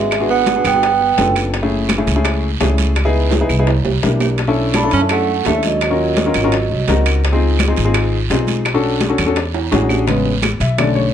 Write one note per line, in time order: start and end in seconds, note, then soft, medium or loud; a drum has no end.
0.00 0.59 G#1 medium
0.00 0.27 G#3 medium
0.00 0.27 E5 medium
0.11 high bongo medium
0.11 high timbale medium
0.11 long guiro medium
0.11 claves medium
0.20 0.45 B3 medium
0.20 0.45 D4 medium
0.20 0.45 F#4 medium
0.20 0.45 G#4 medium
0.29 0.63 B3 medium
0.29 0.63 F#5 medium
0.29 high conga soft
0.46 high bongo medium
0.46 high conga medium
0.46 high timbale medium
0.46 low timbale medium
0.46 short guiro medium
0.56 0.68 B3 medium
0.56 0.68 D4 medium
0.56 0.68 F#4 medium
0.56 0.68 G#4 medium
0.65 1.14 G1 medium
0.65 1.33 B3 medium
0.65 1.33 G5 medium
0.65 high bongo soft
0.65 high conga soft
0.65 high timbale medium
0.65 short guiro medium
0.65 claves medium
0.74 0.83 B3 medium
0.74 0.83 D4 medium
0.74 0.83 F#4 medium
0.74 0.83 G#4 medium
0.82 high bongo medium
0.82 high conga soft
0.82 high timbale medium
0.82 long guiro medium
1.01 high bongo soft
1.01 high conga soft
1.18 2.02 F#1 medium
1.18 1.49 B3 medium
1.18 1.50 D4 medium
1.18 1.50 F4 medium
1.18 1.50 A4 medium
1.18 high bongo medium
1.18 low bongo medium
1.18 high conga medium
1.18 high timbale medium
1.18 low timbale medium
1.18 short guiro medium
1.36 high bongo soft
1.36 high conga soft
1.36 high timbale medium
1.36 short guiro medium
1.36 claves medium
1.53 high bongo medium
1.53 high conga soft
1.53 high timbale medium
1.53 long guiro medium
1.62 1.88 A3 medium
1.62 1.88 C#4 medium
1.62 1.88 E4 medium
1.62 1.88 G#4 medium
1.71 high conga soft
1.89 high bongo medium
1.89 high conga medium
1.89 high timbale medium
1.89 low timbale medium
1.89 short guiro medium
1.89 claves medium
1.98 2.11 A3 medium
1.98 2.11 C#4 medium
1.98 2.11 E4 medium
1.98 2.11 G#4 medium
2.07 2.57 C#2 medium
2.07 high conga soft
2.07 high timbale medium
2.07 short guiro medium
2.16 2.47 A3 medium
2.16 2.47 C#4 medium
2.16 2.47 E4 medium
2.16 2.47 G#4 medium
2.24 high bongo medium
2.24 high conga soft
2.24 high timbale medium
2.24 long guiro medium
2.24 claves medium
2.43 high conga soft
2.60 3.44 C#2 medium
2.60 2.92 A3 medium
2.60 2.92 C#4 medium
2.60 2.92 E4 medium
2.60 2.92 G#4 medium
2.60 high bongo medium
2.60 low bongo medium
2.60 high conga soft
2.60 high timbale medium
2.60 low timbale medium
2.60 short guiro medium
2.78 high conga medium
2.78 high timbale medium
2.78 short guiro medium
2.95 high bongo medium
2.95 high conga soft
2.95 high timbale medium
2.95 long guiro medium
2.95 claves medium
3.05 3.30 B3 medium
3.05 3.30 D#4 medium
3.05 3.30 E4 medium
3.05 3.30 G#4 loud
3.15 high conga soft
3.31 high bongo medium
3.31 high conga medium
3.31 high timbale medium
3.31 short guiro medium
3.41 3.53 B3 medium
3.41 3.53 D#4 medium
3.41 3.54 E4 medium
3.41 3.54 G#4 medium
3.49 3.83 C2 medium
3.49 high bongo soft
3.49 high conga soft
3.49 short guiro medium
3.49 claves medium
3.59 3.68 B3 medium
3.59 3.68 D#4 medium
3.59 3.68 E4 medium
3.59 3.68 G#4 loud
3.67 high bongo medium
3.67 high conga soft
3.67 high timbale medium
3.67 long guiro medium
3.85 4.02 C2 medium
3.85 high bongo soft
3.85 high conga soft
3.85 low timbale medium
4.03 4.87 B1 medium
4.03 4.35 A#3 medium
4.03 4.35 D4 medium
4.03 4.35 E4 medium
4.03 4.35 G4 medium
4.03 high bongo medium
4.03 low bongo medium
4.03 high conga medium
4.03 short guiro medium
4.20 high bongo soft
4.20 high conga soft
4.20 low timbale medium
4.20 short guiro medium
4.20 claves medium
4.38 high bongo medium
4.38 high conga soft
4.38 high timbale medium
4.38 long guiro medium
4.48 4.73 C#4 medium
4.48 4.73 D4 medium
4.48 4.73 E4 medium
4.48 4.73 A4 medium
4.57 high conga soft
4.74 4.92 D4 medium
4.74 4.92 B5 loud
4.74 high bongo medium
4.74 high conga medium
4.74 high timbale medium
4.74 low timbale medium
4.74 short guiro medium
4.74 claves medium
4.83 4.96 C#4 medium
4.83 4.96 D4 medium
4.83 4.96 E4 medium
4.83 4.96 A4 medium
4.91 5.42 F#2 medium
4.91 5.01 C#4 medium
4.91 5.02 A5 medium
4.91 high conga soft
4.91 high timbale medium
4.91 short guiro medium
5.01 5.32 C#4 medium
5.01 5.33 D4 medium
5.01 5.33 E4 medium
5.01 5.33 A4 medium
5.09 5.44 A3 medium
5.09 5.44 F#5 medium
5.09 high bongo medium
5.09 high conga soft
5.09 high timbale medium
5.09 long guiro medium
5.09 claves medium
5.28 high conga soft
5.45 6.29 D#2 medium
5.45 5.63 A3 medium
5.45 5.77 C#4 medium
5.45 5.77 D4 medium
5.45 5.77 E4 medium
5.45 5.77 A4 medium
5.45 5.64 E5 medium
5.45 high bongo medium
5.45 low bongo medium
5.45 high conga soft
5.45 high timbale medium
5.45 low timbale medium
5.45 short guiro medium
5.63 7.03 F#3 medium
5.63 7.03 D#5 medium
5.63 high conga medium
5.63 high timbale medium
5.63 short guiro medium
5.81 high bongo medium
5.81 high conga soft
5.81 high timbale medium
5.81 long guiro medium
5.81 claves medium
5.90 6.15 C#4 medium
5.90 6.15 F4 medium
5.90 6.15 F#4 medium
5.90 6.16 A#4 medium
5.99 high conga soft
6.17 high bongo medium
6.17 high conga medium
6.17 high timbale medium
6.17 low timbale medium
6.17 short guiro medium
6.26 6.39 C#4 medium
6.26 6.39 F4 medium
6.26 6.39 F#4 medium
6.26 6.39 A#4 medium
6.34 6.68 G#1 medium
6.34 high bongo soft
6.34 high conga soft
6.34 high timbale medium
6.34 short guiro medium
6.34 claves medium
6.44 6.53 C#4 medium
6.44 6.53 F4 medium
6.44 6.53 F#4 medium
6.44 6.53 A#4 medium
6.52 high bongo medium
6.52 high conga soft
6.52 high timbale medium
6.52 long guiro medium
6.70 6.87 C2 medium
6.70 high bongo soft
6.70 high conga soft
6.88 7.72 C#2 medium
6.88 7.19 C4 medium
6.88 7.19 D#4 medium
6.88 7.19 F#4 medium
6.88 7.20 A#4 medium
6.88 high bongo medium
6.88 low bongo medium
6.88 high conga medium
6.88 high timbale medium
6.88 low timbale medium
6.88 short guiro medium
7.06 high bongo soft
7.06 high timbale medium
7.06 short guiro medium
7.06 claves medium
7.24 high bongo medium
7.24 high conga soft
7.24 high timbale medium
7.24 long guiro medium
7.32 7.57 C4 medium
7.32 7.57 D#4 medium
7.32 7.58 F4 medium
7.32 7.58 G#4 medium
7.42 high conga soft
7.59 high bongo medium
7.59 high conga medium
7.59 high timbale medium
7.59 low timbale medium
7.59 short guiro medium
7.59 claves medium
7.68 7.81 C4 medium
7.68 7.81 D#4 medium
7.68 7.81 F4 medium
7.68 7.81 G#4 medium
7.77 8.27 G#1 medium
7.77 high conga soft
7.77 high timbale medium
7.77 short guiro medium
7.85 8.17 C4 medium
7.85 8.17 D#4 medium
7.85 8.17 F4 medium
7.85 8.17 G#4 loud
7.94 high bongo medium
7.94 high conga soft
7.94 high timbale medium
7.94 long guiro medium
7.94 claves medium
8.12 high conga soft
8.29 9.13 B1 medium
8.29 8.61 C4 medium
8.29 8.61 D#4 medium
8.29 8.61 F4 medium
8.29 8.62 G#4 medium
8.29 high bongo medium
8.29 low bongo medium
8.29 high conga soft
8.29 high timbale medium
8.29 low timbale medium
8.29 short guiro medium
8.47 high conga medium
8.47 high timbale medium
8.47 short guiro medium
8.65 high bongo medium
8.65 high conga soft
8.65 high timbale medium
8.65 long guiro medium
8.65 claves medium
8.74 8.99 C#4 medium
8.74 8.99 D4 medium
8.74 8.99 F#4 medium
8.74 9.00 A4 loud
8.84 high conga soft
9.01 high bongo medium
9.01 high conga medium
9.01 high timbale medium
9.01 low timbale medium
9.01 short guiro medium
9.09 9.22 C#4 medium
9.09 9.22 D4 medium
9.09 9.22 F#4 medium
9.09 9.22 A4 medium
9.18 9.68 E2 medium
9.18 high bongo soft
9.18 high conga soft
9.18 high timbale medium
9.18 short guiro medium
9.18 claves medium
9.26 9.36 C#4 medium
9.26 9.36 D4 medium
9.26 9.36 F#4 medium
9.26 9.36 A4 medium
9.36 high bongo medium
9.36 high conga soft
9.36 high timbale medium
9.36 long guiro medium
9.54 high bongo soft
9.54 high conga soft
9.54 high timbale medium
9.71 10.55 A1 medium
9.71 10.03 C#4 medium
9.71 10.03 D4 medium
9.71 10.03 F#4 medium
9.71 10.03 G#4 medium
9.71 high bongo medium
9.71 low bongo medium
9.71 high conga medium
9.71 high timbale medium
9.71 short guiro medium
9.89 high bongo soft
9.89 high conga soft
9.89 low timbale medium
9.89 short guiro medium
9.89 claves medium
10.06 10.31 C#3 medium
10.06 10.31 G#3 medium
10.06 10.32 B3 medium
10.06 high bongo medium
10.06 high conga soft
10.06 high timbale medium
10.06 long guiro medium
10.25 high bongo soft
10.25 high conga soft
10.42 high bongo medium
10.42 high conga medium
10.42 high timbale medium
10.42 low timbale medium
10.42 short guiro medium
10.42 claves medium
10.60 11.10 B1 medium
10.60 10.78 E5 medium
10.60 high bongo soft
10.60 high timbale medium
10.60 short guiro medium
10.78 11.14 D3 medium
10.78 11.14 A3 soft
10.78 11.14 C#4 medium
10.78 10.96 D5 medium
10.78 high bongo medium
10.78 high conga soft
10.78 low conga medium
10.78 high timbale medium
10.78 long guiro medium
10.78 claves medium
10.96 11.14 C#5 medium
10.96 high bongo soft
10.96 high conga soft